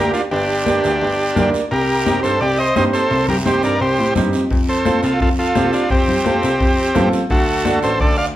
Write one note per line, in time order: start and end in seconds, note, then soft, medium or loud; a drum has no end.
0.00 0.10 D2 medium
0.00 0.20 A#3 medium
0.00 0.21 D4 medium
0.00 0.12 G4 medium
0.00 0.21 G4 medium
0.00 0.11 A#4 medium
0.13 0.22 D4 medium
0.13 0.21 F4 medium
0.13 short guiro medium
0.31 0.84 G1 loud
0.31 1.50 D4 medium
0.31 1.50 G4 medium
0.31 long guiro medium
0.65 0.90 A#3 medium
0.65 0.91 D4 medium
0.65 0.91 G4 medium
0.65 high conga medium
0.65 short guiro medium
0.84 0.98 D2 medium
0.84 short guiro medium
1.01 1.29 G1 medium
1.01 long guiro medium
1.35 1.50 D2 medium
1.35 1.60 A#3 medium
1.35 1.61 D4 medium
1.35 1.61 A#4 loud
1.35 high conga medium
1.35 low conga medium
1.35 short guiro medium
1.54 short guiro medium
1.71 2.24 C2 loud
1.71 2.21 G4 medium
1.71 2.20 A#4 loud
1.71 long guiro medium
2.05 2.30 C4 medium
2.05 2.30 D#4 medium
2.05 2.31 G4 medium
2.05 high conga medium
2.05 short guiro medium
2.23 2.38 G2 medium
2.23 2.40 A4 medium
2.23 2.40 C5 medium
2.23 short guiro medium
2.41 2.69 C2 loud
2.41 2.58 G4 medium
2.41 2.59 D5 loud
2.41 long guiro medium
2.58 2.76 C5 medium
2.58 2.75 D#5 loud
2.76 2.90 G2 medium
2.76 3.00 C4 medium
2.76 3.00 D#4 medium
2.76 3.01 G4 medium
2.76 2.85 C5 medium
2.76 2.84 D#5 loud
2.76 high conga medium
2.76 short guiro medium
2.93 3.27 A4 medium
2.93 3.26 C5 loud
2.93 short guiro medium
3.10 3.63 C2 loud
3.10 long guiro medium
3.28 3.38 G4 medium
3.28 3.36 A#4 medium
3.28 low conga medium
3.45 3.70 C4 medium
3.45 3.70 D#4 medium
3.45 3.70 G4 medium
3.45 3.63 G4 medium
3.45 3.62 C5 medium
3.45 high conga medium
3.45 short guiro medium
3.63 3.77 G2 medium
3.63 3.81 A#4 medium
3.63 3.80 D5 medium
3.63 short guiro medium
3.80 3.95 C2 loud
3.80 4.14 G4 medium
3.80 4.14 C5 medium
3.80 long guiro medium
3.98 4.14 A2 medium
4.15 4.32 G2 medium
4.15 4.40 C4 medium
4.15 4.40 D#4 medium
4.15 4.41 G4 medium
4.15 high conga medium
4.15 low conga medium
4.15 short guiro medium
4.33 4.49 F2 medium
4.33 short guiro medium
4.51 5.03 F2 loud
4.51 bombo low medium
4.51 long guiro medium
4.69 5.01 A4 medium
4.69 5.01 C5 medium
4.85 5.10 C4 medium
4.85 5.10 F4 medium
4.85 5.10 A4 medium
4.85 bombo rim medium
4.85 high conga medium
4.85 short guiro medium
5.03 5.17 C2 medium
5.03 5.20 F4 medium
5.03 5.20 A4 medium
5.03 short guiro medium
5.20 5.49 F2 medium
5.20 5.29 F4 medium
5.20 5.29 A4 medium
5.20 bombo low medium
5.20 long guiro medium
5.39 5.71 F4 medium
5.39 5.75 A4 medium
5.55 5.70 C2 medium
5.55 5.80 C4 medium
5.55 5.80 F4 medium
5.55 5.80 G4 medium
5.55 bombo rim medium
5.55 high conga medium
5.55 short guiro medium
5.73 5.90 D4 medium
5.73 5.90 F4 medium
5.73 short guiro medium
5.90 6.43 F2 loud
5.90 7.09 C4 medium
5.90 7.09 G4 medium
5.90 bombo low medium
5.90 long guiro medium
6.08 low conga medium
6.25 6.50 C4 medium
6.25 6.50 F4 medium
6.25 6.50 A4 medium
6.25 bombo rim medium
6.25 high conga medium
6.25 short guiro medium
6.43 6.57 C2 medium
6.43 short guiro medium
6.60 6.88 F2 loud
6.60 bombo low medium
6.60 long guiro medium
6.95 7.10 A1 medium
6.95 7.20 C4 medium
6.95 7.20 F4 medium
6.95 7.20 A4 loud
6.95 bombo rim medium
6.95 high conga medium
6.95 low conga medium
6.95 short guiro medium
7.13 short guiro medium
7.30 7.83 D2 loud
7.30 7.79 F#4 medium
7.30 7.79 A4 loud
7.30 bombo low medium
7.30 long guiro medium
7.65 7.90 D4 medium
7.65 7.90 F#4 medium
7.65 7.90 A4 medium
7.65 bombo rim medium
7.65 high conga medium
7.65 short guiro medium
7.83 7.97 A1 loud
7.83 8.00 A4 medium
7.83 7.99 C5 medium
7.83 short guiro medium
8.00 8.28 D2 medium
8.00 8.17 A4 medium
8.00 8.17 D5 loud
8.00 bombo low medium
8.00 long guiro medium
8.18 8.26 D5 medium
8.18 8.25 F5 loud